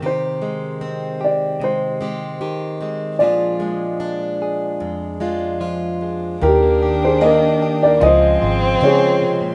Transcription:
<<
  \new Staff \with { instrumentName = "String section" } { \time 4/4 \key ees \major \tempo 4 = 75 r1 | r1 | <bes' g'' d''' ees'''>2 <aes f'' aes'' c'''>2 | }
  \new Staff \with { instrumentName = "Upright piano" } { \time 4/4 \key ees \major c''4. d''8 c''2 | d''2.~ d''8 r8 | <g' bes'>8. <aes' c''>16 <bes' ees''>8. <bes' d''>16 <c'' ees''>4 <aes' des''>4 | }
  \new Staff \with { instrumentName = "Violin" } { \time 4/4 \key ees \major r1 | r1 | d'2 c'2 | }
  \new Staff \with { instrumentName = "Steel-string acoustic guitar" } { \time 4/4 \key ees \major <ees g'>8 aes8 c'4 aes8 <aes c' g'>8 g'8 c'8 | <f f'>8 aes8 d'4 aes8 <aes d' f'>8 f'8 d'8 | ees4 bes4 f4 c'4 | }
  \new Staff \with { instrumentName = "Clean electric guitar" } { \clef bass \time 4/4 \key ees \major << { r8 aes8 c'8 g'4 c'4 aes8 | <f aes d' aes'>8 aes8 d'8 aes'4 d'4 aes8 | g'16 bes16 g'8 bes8 g'16 ees'16 f'16 aes16 f'8 aes4 | } \\ { <c ees>2 c4 ees4 | bes,2 f,4 f4 | ees,2 des4. c16 bes,16 | } >> }
  \new Staff \with { instrumentName = "Fingered electric bass" } { \clef bass \time 4/4 \key ees \major r1 | r1 | ees,2 des,8 aes,,8 des4 | }
>>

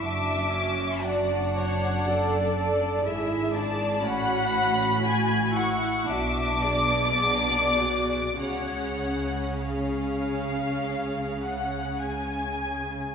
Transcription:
<<
  \new Staff \with { instrumentName = "Violin section" } { \time 4/4 \key d \lydian \tempo 4 = 56 d'''4 fis''2 r8 a''8 | \key cis \phrygian b''4. cis'''8 d'''2 | fis''4 eis''2~ eis''8 r8 | }
  \new Staff \with { instrumentName = "Violin section" } { \time 4/4 \key d \lydian e''4 d''8 cis''8 d''4 e''8 d''8 | \key cis \phrygian fis''4 gis''8 fis''8 e''8 d''4. | cis''4 eis''4. fis''8 gis''4 | }
  \new Staff \with { instrumentName = "Viola section" } { \time 4/4 \key d \lydian << { fis'2 a'8 a'8 gis'4 | \key cis \phrygian fis'2 fis'8 gis'8 gis'4 | gis'1 | } \\ { d'8 cis'8 d'2 e'8 d'8 | cis'8 cis'8 fis'8 e'8 d'4 d'8 fis'8 | cis'1 | } >> }
  \new Staff \with { instrumentName = "Cello section" } { \clef bass \time 4/4 \key d \lydian fis,2. gis,4 | \key cis \phrygian a,2 b,2 | cis1 | }
  \new Staff \with { instrumentName = "Double bass section" } { \clef bass \time 4/4 \key d \lydian fis,,2. gis,,4 | \key cis \phrygian a,,2 b,,2 | cis,1 | }
>>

